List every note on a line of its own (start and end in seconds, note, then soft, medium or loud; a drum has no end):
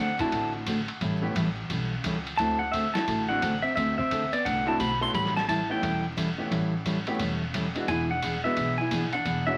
0.00 0.18 D2 medium
0.00 0.19 D4 medium
0.00 0.20 F#5 loud
0.19 0.64 A3 medium
0.19 0.64 C4 medium
0.19 0.64 D4 medium
0.19 0.64 E4 medium
0.19 0.52 E4 medium
0.19 0.64 F#4 medium
0.19 0.52 A5 loud
0.19 kick medium
0.19 ride medium
0.32 0.87 A1 medium
0.32 0.54 D3 medium
0.32 0.55 A3 medium
0.32 0.55 C4 medium
0.32 0.55 F#4 medium
0.32 0.55 A4 medium
0.32 kick soft
0.32 ride medium
0.66 0.78 D3 medium
0.66 0.78 A3 medium
0.66 0.78 C4 medium
0.66 0.79 F#4 medium
0.66 0.79 A4 medium
0.66 kick soft
0.66 hi-hat pedal medium
0.66 ride medium
0.88 ride soft
1.01 1.28 A1 medium
1.01 1.23 E3 medium
1.01 1.23 G3 medium
1.01 1.23 C#4 medium
1.01 1.23 E4 medium
1.01 1.23 A4 medium
1.01 kick soft
1.01 ride medium
1.21 1.33 A3 medium
1.21 1.34 B3 medium
1.21 1.34 C#4 medium
1.21 1.34 E4 medium
1.21 1.34 G4 medium
1.35 1.64 A1 medium
1.35 1.47 E3 medium
1.35 1.47 G3 medium
1.35 1.47 C#4 medium
1.35 1.47 E4 medium
1.35 1.47 A4 medium
1.35 kick soft
1.35 hi-hat pedal medium
1.35 ride medium
1.70 1.99 B1 medium
1.70 1.92 E3 medium
1.70 1.92 G3 medium
1.70 1.92 C#4 medium
1.70 1.92 E4 medium
1.70 1.92 A4 medium
1.70 kick soft
1.70 ride medium
2.04 2.33 C#2 medium
2.04 2.16 E3 medium
2.04 2.16 G3 medium
2.04 2.16 C#4 medium
2.04 2.16 E4 medium
2.04 2.16 A4 medium
2.04 kick soft
2.04 hi-hat pedal medium
2.04 ride medium
2.27 ride soft
2.37 2.94 D2 medium
2.37 2.61 D3 medium
2.37 2.61 A3 medium
2.37 2.61 C4 medium
2.37 2.61 E4 medium
2.37 2.61 F#4 medium
2.37 2.61 A4 medium
2.37 2.58 A5 loud
2.37 kick soft
2.37 ride medium
2.59 2.72 D4 medium
2.59 2.72 F#5 medium
2.72 2.85 D3 medium
2.72 2.85 A3 medium
2.72 2.94 C4 medium
2.72 2.85 C4 medium
2.72 2.85 F#4 medium
2.72 2.85 A4 medium
2.72 2.94 E5 medium
2.72 kick soft
2.72 hi-hat pedal medium
2.72 ride medium
2.94 3.27 E4 medium
2.94 3.30 A5 medium
2.94 snare medium
2.94 ride soft
3.08 3.62 A1 medium
3.08 3.29 D3 medium
3.08 3.29 A3 medium
3.08 3.29 C4 medium
3.08 3.29 F#4 medium
3.08 3.30 A4 medium
3.08 kick soft
3.08 ride medium
3.29 3.41 A3 medium
3.29 3.41 C4 medium
3.29 3.41 D4 medium
3.29 3.61 D4 medium
3.29 3.41 E4 medium
3.29 3.41 F#4 medium
3.29 3.64 F#5 medium
3.42 3.53 D3 medium
3.42 3.53 A3 medium
3.42 3.53 C4 medium
3.42 3.53 F#4 medium
3.42 3.54 A4 medium
3.42 kick soft
3.42 hi-hat pedal medium
3.42 ride medium
3.62 3.75 C4 medium
3.62 3.74 E5 medium
3.76 4.31 D2 medium
3.76 3.98 D3 medium
3.76 3.98 A3 medium
3.76 3.97 C4 medium
3.76 3.98 C4 medium
3.76 3.99 F#4 medium
3.76 3.99 A4 medium
3.76 3.97 E5 medium
3.76 kick soft
3.76 ride medium
3.98 4.30 C4 medium
3.98 4.33 E5 loud
3.98 kick medium
4.11 4.23 D3 medium
4.11 4.22 A3 medium
4.11 4.23 C4 medium
4.11 4.23 F#4 medium
4.11 4.23 A4 medium
4.11 kick soft
4.11 hi-hat pedal medium
4.11 ride medium
4.33 4.45 B3 medium
4.33 4.46 D5 medium
4.33 ride medium
4.45 4.74 C2 medium
4.45 4.67 D3 medium
4.45 4.67 A3 medium
4.45 4.67 C4 medium
4.45 4.65 D4 medium
4.45 4.67 F#4 medium
4.45 4.68 A4 medium
4.45 4.67 F#5 loud
4.45 kick soft
4.45 ride medium
4.66 4.78 A3 medium
4.66 4.78 C4 medium
4.66 4.78 D4 medium
4.66 4.78 E4 medium
4.66 4.80 E4 medium
4.66 4.78 F#4 medium
4.66 4.80 A5 medium
4.79 5.09 B1 medium
4.79 4.91 D3 medium
4.79 4.91 A3 medium
4.79 4.91 C4 medium
4.79 5.01 F#4 medium
4.79 4.91 F#4 medium
4.79 4.92 A4 loud
4.79 5.02 B5 loud
4.79 kick soft
4.79 hi-hat pedal medium
4.79 ride medium
5.01 5.12 A3 medium
5.01 5.12 B3 medium
5.01 5.12 C#4 medium
5.01 5.12 E4 medium
5.01 5.13 F#4 medium
5.01 5.14 A4 medium
5.01 5.14 C6 loud
5.14 5.69 A1 medium
5.14 5.35 E3 medium
5.14 5.35 G3 medium
5.14 5.35 C#4 medium
5.14 5.36 E4 medium
5.14 5.37 G4 medium
5.14 5.36 A4 medium
5.14 5.36 B5 loud
5.14 kick soft
5.14 ride medium
5.26 snare soft
5.37 5.49 F#4 medium
5.37 5.47 A5 medium
5.37 snare medium
5.48 5.59 E3 medium
5.48 5.59 G3 medium
5.48 5.59 C#4 medium
5.48 5.60 E4 medium
5.48 5.69 E4 medium
5.48 5.60 A4 medium
5.48 5.69 A5 loud
5.48 kick soft
5.48 hi-hat pedal medium
5.48 ride medium
5.69 5.81 A3 medium
5.69 5.81 B3 medium
5.69 5.81 C#4 medium
5.69 5.81 E4 medium
5.69 6.05 E4 medium
5.69 5.81 G4 medium
5.69 6.05 G5 medium
5.81 6.37 E1 medium
5.81 6.03 E3 medium
5.81 6.03 G3 medium
5.81 6.04 C#4 medium
5.81 6.04 E4 medium
5.81 6.04 A4 medium
5.81 kick soft
5.81 ride medium
6.17 6.28 E3 medium
6.17 6.28 G3 medium
6.17 6.28 C#4 medium
6.17 6.28 E4 medium
6.17 6.28 A4 medium
6.17 kick soft
6.17 hi-hat pedal medium
6.17 ride medium
6.38 6.49 A3 medium
6.38 6.50 B3 medium
6.38 6.50 C#4 medium
6.38 6.50 E4 medium
6.38 6.50 G4 medium
6.51 7.06 A1 medium
6.51 6.73 E3 medium
6.51 6.73 G3 medium
6.51 6.73 C#4 medium
6.51 6.73 E4 medium
6.51 6.73 A4 medium
6.51 kick soft
6.51 ride medium
6.85 6.97 E3 medium
6.85 6.97 G3 medium
6.85 6.97 C#4 medium
6.85 6.97 E4 medium
6.85 6.97 A4 medium
6.85 kick soft
6.85 hi-hat pedal medium
6.85 ride medium
7.07 7.19 A3 medium
7.07 7.19 B3 medium
7.07 7.19 C#4 medium
7.07 7.19 E4 medium
7.07 7.19 G4 loud
7.07 ride soft
7.19 7.74 E1 medium
7.19 7.41 E3 medium
7.19 7.42 G3 medium
7.19 7.42 C#4 medium
7.19 7.42 E4 medium
7.19 7.42 A4 medium
7.19 kick soft
7.19 ride medium
7.54 7.66 E3 medium
7.54 7.66 G3 medium
7.54 7.66 C#4 medium
7.54 7.66 E4 medium
7.54 7.66 A4 medium
7.54 kick soft
7.54 hi-hat pedal medium
7.54 ride medium
7.75 7.87 G#3 medium
7.75 7.87 B3 medium
7.75 7.87 D4 medium
7.75 7.87 E4 medium
7.75 7.87 F#4 medium
7.75 ride soft
7.88 8.43 E1 medium
7.88 8.10 E3 medium
7.88 8.10 B3 medium
7.88 8.10 D4 medium
7.88 8.11 E4 loud
7.88 8.10 G#4 medium
7.88 8.09 G#5 loud
7.88 kick soft
7.88 ride medium
8.11 8.45 D4 medium
8.11 8.46 F#5 loud
8.22 8.34 E3 medium
8.22 8.34 B3 medium
8.22 8.34 D4 medium
8.22 8.34 G#4 medium
8.22 kick soft
8.22 hi-hat pedal medium
8.22 ride medium
8.44 8.55 G#3 medium
8.44 8.56 B3 medium
8.44 8.77 B3 medium
8.44 8.56 D4 medium
8.44 8.56 E4 medium
8.44 8.56 F#4 medium
8.44 8.80 E5 loud
8.57 9.12 B1 medium
8.57 8.79 E3 medium
8.57 8.79 B3 medium
8.57 8.79 D4 medium
8.57 8.79 G#4 medium
8.57 kick soft
8.57 ride medium
8.78 9.12 E4 medium
8.78 9.13 G#5 loud
8.91 9.03 E3 medium
8.91 9.03 B3 medium
8.91 9.03 D4 medium
8.91 9.03 G#4 medium
8.91 kick soft
8.91 hi-hat pedal medium
8.91 ride medium
9.13 9.46 D4 loud
9.13 9.48 F#5 loud
9.13 ride soft
9.25 9.58 E1 medium
9.25 9.47 E3 medium
9.25 9.47 B3 medium
9.25 9.47 D4 medium
9.25 9.47 G#4 medium
9.25 kick soft
9.25 ride medium
9.46 9.58 G#3 medium
9.46 9.58 B3 medium
9.46 9.58 C#4 medium
9.46 9.58 D4 medium
9.46 9.58 E4 medium
9.46 9.58 F#4 medium
9.46 9.58 E5 loud